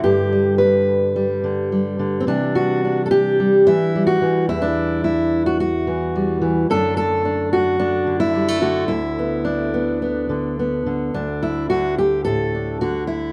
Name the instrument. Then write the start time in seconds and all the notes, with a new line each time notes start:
steel-string acoustic guitar
Already playing: D3
0.04 G2 G4
0.33 G3
0.58 B4
1.16 G3
1.44 D3
1.72 G3
1.99 D3
2.20 C4
2.27 C3 E3 G3 D4
2.55 F#4
2.85 D4
3.06 A4
3.11 G4
3.40 G3
3.67 E3 E4
3.95 G3
4.07 F#4
4.22 E3
4.49 E2 E4
4.62 D4
5.04 E4
5.46 F#4
5.60 F#4
5.87 E3
6.16 G3
6.41 E3
6.70 F#2 D3 A3 D4 A4
6.97 A4
7.25 D4
7.53 F#4
7.80 D4
8.07 D3
8.20 E4
8.35 G3
8.48 A3
8.61 D3 F#4
8.88 D2 E4
9.19 B3
9.45 D4
9.74 B3
10.02 B3
10.29 D3
10.59 B3
10.86 D3
11.14 D2 D4
11.43 E4
11.70 D3 F#4
11.98 G4
12.25 A2 A4
12.55 D4
12.81 D3 F#4
13.07 E4